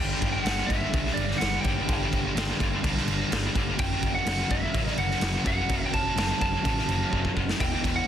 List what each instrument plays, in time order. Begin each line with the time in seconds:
Already playing: picked electric bass G1, overdriven electric guitar G2 D3 G3, lead electric guitar G5
0.22 picked electric bass G1, kick, crash
0.32 lead electric guitar F#5
0.45 picked electric bass G1, overdriven electric guitar G2 D3 G3, snare, crash
0.66 picked electric bass G1, overdriven electric guitar G2 D3 G3, lead electric guitar E5, kick, crash
0.93 picked electric bass B1, overdriven electric guitar G2 D3 G3, kick, crash
1.07 snare
1.14 picked electric bass G1, lead electric guitar D5, crash
1.31 snare
1.38 picked electric bass G1, overdriven electric guitar G2 D3 G3, lead electric guitar F#5, crash
1.42 snare
1.61 picked electric bass G1, overdriven electric guitar G2 D3, lead electric guitar G5, crash
1.65 overdriven electric guitar G3, kick
1.88 picked electric bass G1, overdriven electric guitar G2 D3 G3, kick, crash
2.13 picked electric bass G1, kick, crash
2.35 picked electric bass G1, overdriven electric guitar G2 D3 G3, snare, crash
2.59 picked electric bass G1, overdriven electric guitar G2 D3 G3, kick, crash
2.83 picked electric bass B1, overdriven electric guitar G2 D3 G3, kick, crash
2.97 snare
3.07 picked electric bass G1, crash
3.31 picked electric bass G1, overdriven electric guitar G2 D3 G3, snare, crash
3.55 picked electric bass G1, overdriven electric guitar G2 D3 G3, kick, crash
3.78 picked electric bass F#1, overdriven electric guitar F#2 C#3 F#3, lead electric guitar G5, kick, crash
4.03 picked electric bass F#1, kick, crash
4.15 lead electric guitar F#5
4.26 picked electric bass F#1, overdriven electric guitar F#2 C#3 F#3, snare, crash
4.49 picked electric bass F#1, overdriven electric guitar F#2 C#3 F#3, lead electric guitar E5, kick, crash
4.74 picked electric bass A1, overdriven electric guitar F#2 C#3 F#3, kick, crash
4.87 snare
4.97 picked electric bass F#1, lead electric guitar F#5, crash
5.11 snare
5.21 picked electric bass F#1, overdriven electric guitar F#2 C#3 F#3, snare, crash
5.45 picked electric bass F#1, overdriven electric guitar F#2 C#3 F#3, lead electric guitar F#5, kick, crash
5.69 picked electric bass F#1, overdriven electric guitar F#2 C#3 F#3, kick, crash
5.86 lead electric guitar G5
5.93 picked electric bass F#1, lead electric guitar A5, kick, crash
6.16 picked electric bass F#1, overdriven electric guitar F#2 C#3 F#3, snare, crash
6.41 picked electric bass F#1, overdriven electric guitar F#2 C#3 F#3, lead electric guitar A5, kick, crash
6.63 picked electric bass A1, overdriven electric guitar F#2 C#3 F#3, kick, crash
6.79 snare
6.88 picked electric bass F#1, crash
7.11 picked electric bass F#1, overdriven electric guitar F#2 C#3 F#3, kick
7.25 kick
7.36 picked electric bass F#1, overdriven electric guitar F#2 C#3 F#3, kick
7.49 snare
7.59 picked electric bass E1, overdriven electric guitar E2 B2 E3, lead electric guitar G5, kick, crash
7.84 picked electric bass E1, kick, crash
7.96 lead electric guitar F#5